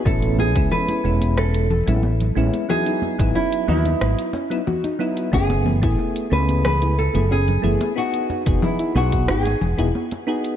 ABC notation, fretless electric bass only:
X:1
M:4/4
L:1/16
Q:1/4=91
K:E
V:1 name="Fretless electric bass" clef=bass
A,,,3 C,, z2 E,,,4- E,,, A,,,3 A,,, z | z3 G,,, z2 D,, z G,,, z6 z | F,,,3 A,,, z2 C,,4- C,, F,,,3 F,,, z | z3 E,,, z2 B,,,2 G,,, z E,,, E,,, z4 |]